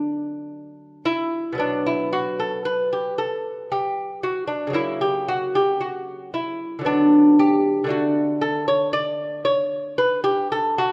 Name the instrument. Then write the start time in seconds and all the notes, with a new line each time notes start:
lute
Already playing: D3 F#3 A3 D4
1.05 E4
1.53 B2 F#3
1.58 B3 D4
1.87 E4
2.13 F#4
2.40 A4
2.65 B4
2.93 G4
3.18 A4
3.72 G4
4.23 F#4
4.48 D4
4.67 C#3 F#3
4.73 A#3 E4
5.01 G4
5.28 F#4
5.55 G4
5.81 F#4
6.34 E4
6.79 D3 F#3
6.85 B3 D4
7.39 G4
7.84 D3 A3
7.89 D4 F#4
8.41 A4
8.68 C#5
8.93 D5
9.45 C#5
9.98 B4
10.24 G4
10.52 A4
10.78 F#4